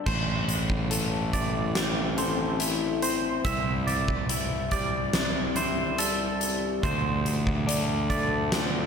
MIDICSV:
0, 0, Header, 1, 5, 480
1, 0, Start_track
1, 0, Tempo, 846262
1, 35, Time_signature, 4, 2, 24, 8
1, 5028, End_track
2, 0, Start_track
2, 0, Title_t, "Clean electric guitar"
2, 0, Program_c, 0, 27
2, 35, Note_on_c, 0, 72, 56
2, 754, Note_off_c, 0, 72, 0
2, 756, Note_on_c, 0, 74, 53
2, 1235, Note_off_c, 0, 74, 0
2, 1238, Note_on_c, 0, 72, 55
2, 1710, Note_off_c, 0, 72, 0
2, 1716, Note_on_c, 0, 72, 63
2, 1953, Note_off_c, 0, 72, 0
2, 1955, Note_on_c, 0, 76, 60
2, 2192, Note_off_c, 0, 76, 0
2, 2195, Note_on_c, 0, 74, 58
2, 2668, Note_off_c, 0, 74, 0
2, 2675, Note_on_c, 0, 74, 61
2, 3153, Note_off_c, 0, 74, 0
2, 3156, Note_on_c, 0, 72, 58
2, 3395, Note_on_c, 0, 69, 67
2, 3396, Note_off_c, 0, 72, 0
2, 3875, Note_off_c, 0, 69, 0
2, 3877, Note_on_c, 0, 72, 69
2, 4355, Note_off_c, 0, 72, 0
2, 4594, Note_on_c, 0, 74, 63
2, 5028, Note_off_c, 0, 74, 0
2, 5028, End_track
3, 0, Start_track
3, 0, Title_t, "Clean electric guitar"
3, 0, Program_c, 1, 27
3, 35, Note_on_c, 1, 45, 51
3, 511, Note_on_c, 1, 69, 49
3, 753, Note_on_c, 1, 64, 49
3, 995, Note_on_c, 1, 60, 55
3, 1224, Note_off_c, 1, 69, 0
3, 1230, Note_on_c, 1, 69, 47
3, 1236, Note_off_c, 1, 45, 0
3, 1471, Note_off_c, 1, 64, 0
3, 1473, Note_on_c, 1, 64, 55
3, 1708, Note_off_c, 1, 60, 0
3, 1715, Note_on_c, 1, 60, 51
3, 1951, Note_on_c, 1, 36, 56
3, 1953, Note_off_c, 1, 69, 0
3, 1955, Note_off_c, 1, 60, 0
3, 2437, Note_off_c, 1, 64, 0
3, 2437, Note_on_c, 1, 64, 58
3, 2674, Note_on_c, 1, 55, 55
3, 2916, Note_on_c, 1, 48, 56
3, 3151, Note_off_c, 1, 64, 0
3, 3153, Note_off_c, 1, 36, 0
3, 3153, Note_on_c, 1, 64, 57
3, 3388, Note_off_c, 1, 55, 0
3, 3395, Note_on_c, 1, 55, 58
3, 3626, Note_off_c, 1, 48, 0
3, 3633, Note_on_c, 1, 48, 52
3, 3870, Note_on_c, 1, 38, 56
3, 3874, Note_off_c, 1, 48, 0
3, 3874, Note_off_c, 1, 55, 0
3, 3887, Note_off_c, 1, 64, 0
3, 4349, Note_on_c, 1, 62, 66
3, 4590, Note_on_c, 1, 57, 57
3, 4830, Note_on_c, 1, 53, 61
3, 5028, Note_off_c, 1, 38, 0
3, 5028, Note_off_c, 1, 53, 0
3, 5028, Note_off_c, 1, 57, 0
3, 5028, Note_off_c, 1, 62, 0
3, 5028, End_track
4, 0, Start_track
4, 0, Title_t, "Fingered electric bass"
4, 0, Program_c, 2, 33
4, 37, Note_on_c, 2, 33, 60
4, 1934, Note_off_c, 2, 33, 0
4, 1955, Note_on_c, 2, 36, 52
4, 3852, Note_off_c, 2, 36, 0
4, 3875, Note_on_c, 2, 38, 57
4, 5028, Note_off_c, 2, 38, 0
4, 5028, End_track
5, 0, Start_track
5, 0, Title_t, "Drums"
5, 36, Note_on_c, 9, 49, 62
5, 37, Note_on_c, 9, 36, 75
5, 93, Note_off_c, 9, 49, 0
5, 94, Note_off_c, 9, 36, 0
5, 276, Note_on_c, 9, 42, 41
5, 333, Note_off_c, 9, 42, 0
5, 396, Note_on_c, 9, 36, 58
5, 452, Note_off_c, 9, 36, 0
5, 515, Note_on_c, 9, 42, 59
5, 572, Note_off_c, 9, 42, 0
5, 757, Note_on_c, 9, 36, 54
5, 757, Note_on_c, 9, 42, 45
5, 814, Note_off_c, 9, 36, 0
5, 814, Note_off_c, 9, 42, 0
5, 995, Note_on_c, 9, 38, 76
5, 995, Note_on_c, 9, 42, 62
5, 1052, Note_off_c, 9, 38, 0
5, 1052, Note_off_c, 9, 42, 0
5, 1235, Note_on_c, 9, 42, 48
5, 1292, Note_off_c, 9, 42, 0
5, 1474, Note_on_c, 9, 42, 63
5, 1531, Note_off_c, 9, 42, 0
5, 1715, Note_on_c, 9, 42, 46
5, 1772, Note_off_c, 9, 42, 0
5, 1955, Note_on_c, 9, 42, 62
5, 1956, Note_on_c, 9, 36, 81
5, 2012, Note_off_c, 9, 36, 0
5, 2012, Note_off_c, 9, 42, 0
5, 2199, Note_on_c, 9, 42, 42
5, 2255, Note_off_c, 9, 42, 0
5, 2316, Note_on_c, 9, 36, 60
5, 2373, Note_off_c, 9, 36, 0
5, 2436, Note_on_c, 9, 42, 68
5, 2492, Note_off_c, 9, 42, 0
5, 2673, Note_on_c, 9, 42, 38
5, 2675, Note_on_c, 9, 36, 49
5, 2730, Note_off_c, 9, 42, 0
5, 2732, Note_off_c, 9, 36, 0
5, 2912, Note_on_c, 9, 38, 82
5, 2912, Note_on_c, 9, 42, 57
5, 2969, Note_off_c, 9, 38, 0
5, 2969, Note_off_c, 9, 42, 0
5, 3152, Note_on_c, 9, 42, 46
5, 3209, Note_off_c, 9, 42, 0
5, 3395, Note_on_c, 9, 42, 64
5, 3451, Note_off_c, 9, 42, 0
5, 3636, Note_on_c, 9, 42, 45
5, 3692, Note_off_c, 9, 42, 0
5, 3876, Note_on_c, 9, 36, 89
5, 3877, Note_on_c, 9, 42, 54
5, 3933, Note_off_c, 9, 36, 0
5, 3934, Note_off_c, 9, 42, 0
5, 4118, Note_on_c, 9, 42, 40
5, 4174, Note_off_c, 9, 42, 0
5, 4236, Note_on_c, 9, 36, 57
5, 4293, Note_off_c, 9, 36, 0
5, 4360, Note_on_c, 9, 42, 65
5, 4417, Note_off_c, 9, 42, 0
5, 4594, Note_on_c, 9, 36, 50
5, 4595, Note_on_c, 9, 42, 38
5, 4651, Note_off_c, 9, 36, 0
5, 4651, Note_off_c, 9, 42, 0
5, 4833, Note_on_c, 9, 38, 86
5, 4833, Note_on_c, 9, 42, 59
5, 4890, Note_off_c, 9, 38, 0
5, 4890, Note_off_c, 9, 42, 0
5, 5028, End_track
0, 0, End_of_file